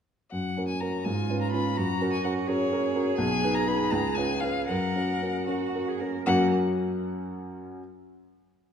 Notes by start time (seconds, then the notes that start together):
0.31 F#2 F#5
0.57 C#4 F#4 A#4
0.68 G#5
0.80 C#4 F#4 A#4 A#5
1.04 G#2 F4 G#5
1.30 C#4 F4 B4
1.41 A#5
1.52 C#4 F4 B4 B5
1.77 F#2 F#4 A#5
2.01 C#4 F#4 A#4
2.13 G#5
2.24 C#4 F#4 A#4 F#5
2.48 C#4 F#4 G#4 A#4 C#5
2.72 C#4 F#4 A#4
2.95 C#4 F#4 A#4
3.17 B1 G#5
3.43 D#4 G#4 B4
3.54 A#5
3.67 D#4 G#4 B4 B5
3.90 C#2 A#5
4.15 C#4 F4 B4 G#5
4.40 C#4 F4 B4 F5
4.67 F#2 A#4 F#5
4.95 C#4 F#4 A#4
5.22 C#4 F#4 A#4
5.46 C#4 F#4 A#4
5.75 C#4 F#4 A#4
5.88 G#4
5.99 C#4 F#4 A#4
6.26 F#2 F#3 A#3 C#4 F#4 A#4 F#5